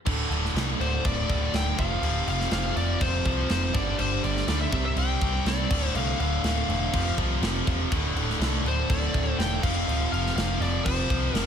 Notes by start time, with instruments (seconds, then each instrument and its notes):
0.06 picked electric bass D1, distorted electric guitar D2 A2 D3, kick, crash
0.30 picked electric bass D1, distorted electric guitar D2 A2 D3, crash
0.45 snare
0.54 picked electric bass C2, distorted electric guitar D2 A2 D3, snare, crash
0.80 picked electric bass D1, distorted electric guitar D2 A2 D3, lead electric guitar C5, crash
1.05 picked electric bass D1, distorted electric guitar D2 A2 D3, lead electric guitar D5, kick, crash
1.29 picked electric bass D1, distorted electric guitar D2 A2 D3, kick, crash
1.54 picked electric bass D1, distorted electric guitar D2 A2 D3, lead electric guitar G5, snare, crash
1.78 picked electric bass F1, distorted electric guitar F2 C3 F3, lead electric guitar F5, kick, crash
2.02 picked electric bass D1, distorted electric guitar F2 C3 F3, crash
2.27 picked electric bass F1, distorted electric guitar F2 C3 F3, lead electric guitar F5, crash
2.40 snare
2.51 picked electric bass F1, distorted electric guitar F2 C3 F3, lead electric guitar F5, snare, crash
2.76 picked electric bass F1, distorted electric guitar F2 C3 F3, lead electric guitar D5, crash
3.01 picked electric bass F1, distorted electric guitar F2 C3 F3, lead electric guitar C5, kick, crash
3.25 picked electric bass C2, distorted electric guitar F2 C3 F3, kick, crash
3.49 picked electric bass F1, distorted electric guitar F2 C3 F3, lead electric guitar C5, snare, crash
3.73 picked electric bass G1, distorted electric guitar G2 D3 G3, lead electric guitar D5, kick, crash
3.99 picked electric bass G1, distorted electric guitar G2 D3 G3, lead electric guitar C5, crash
4.23 picked electric bass G1, distorted electric guitar G2 D3 G3, lead electric guitar D5, crash
4.37 snare
4.47 picked electric bass D2, distorted electric guitar G2 D3 G3, lead electric guitar D5, snare, crash
4.61 lead electric guitar E5
4.72 picked electric bass C2, distorted electric guitar C3 G3 C4, kick, crash
4.86 lead electric guitar E5
4.96 picked electric bass C2, distorted electric guitar C3 G3 C4, lead electric guitar G5, crash
5.21 picked electric bass C2, distorted electric guitar C3 G3 C4, kick, crash
5.45 picked electric bass C2, distorted electric guitar C3 G3 C4, lead electric guitar D5, snare, crash
5.70 picked electric bass D1, distorted electric guitar D2 A2 D3, kick, crash
5.95 picked electric bass C2, distorted electric guitar D2 A2 D3, lead electric guitar F5, crash
6.20 picked electric bass D1, distorted electric guitar D2 A2 D3, lead electric guitar F5, crash
6.44 picked electric bass D1, distorted electric guitar D2 A2 D3, snare, crash
6.69 picked electric bass E1, distorted electric guitar D2 A2 D3, crash
6.93 picked electric bass F1, distorted electric guitar F2 C3 F3, kick, crash
7.17 picked electric bass C2, distorted electric guitar F2 C3 F3, kick, crash
7.41 picked electric bass F1, distorted electric guitar F2 C3 F3, snare, crash
7.67 picked electric bass E1, distorted electric guitar F2 C3 F3, kick, crash
7.91 picked electric bass D1, distorted electric guitar D2 A2 D3, kick, crash
8.15 picked electric bass D1, distorted electric guitar D2 A2 D3, crash
8.30 snare
8.40 picked electric bass C2, distorted electric guitar D2 A2 D3, snare, crash
8.64 picked electric bass D1, distorted electric guitar D2 A2 D3, lead electric guitar C5, crash
8.89 picked electric bass D1, distorted electric guitar D2 A2 D3, lead electric guitar D5, kick, crash
9.14 picked electric bass D1, distorted electric guitar D2 A2 D3, kick, crash
9.38 picked electric bass E1, distorted electric guitar D2 A2 D3, lead electric guitar G5, snare, crash
9.63 picked electric bass F1, distorted electric guitar F2 C3 F3, lead electric guitar F5, kick, crash
9.87 picked electric bass D1, distorted electric guitar F2 C3 F3, crash
10.12 picked electric bass F1, distorted electric guitar F2 C3 F3, lead electric guitar F5, crash
10.26 snare
10.36 picked electric bass F1, distorted electric guitar F2 C3 F3, lead electric guitar F5, snare, crash
10.60 picked electric bass F1, distorted electric guitar F2 C3 F3, lead electric guitar D5, crash
10.84 picked electric bass F1, distorted electric guitar F2 C3 F3, lead electric guitar C5, kick, crash
11.09 picked electric bass C2, distorted electric guitar F2 C3 F3, kick, crash
11.33 picked electric bass F1, distorted electric guitar F2 C3 F3, lead electric guitar A#4, snare, crash